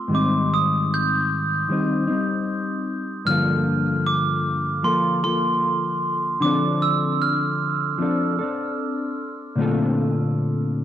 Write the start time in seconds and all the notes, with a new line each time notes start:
Already playing: A3 C4 F4 C6
0.08 G#2 D#3 G3
0.13 C4 D#4 D6
0.54 D#6
0.94 G6
1.69 D#3 G3 C4 D#4
2.07 C4 D#4
2.11 G3
3.25 G2 D3 F3 F6
3.29 A#3 F4 A4
4.07 D6
4.83 F3 A#3 F4 C6
4.87 A4
5.23 F3 A#3 F4 A4 C6
6.40 D3 F3 C4 D6
6.45 D4 A4
6.82 E6
7.22 F6
7.98 F3 C4 D4
8.02 A4
8.39 C4 D4 A4
9.55 A#2 D3 A3 C4
9.60 F4 A4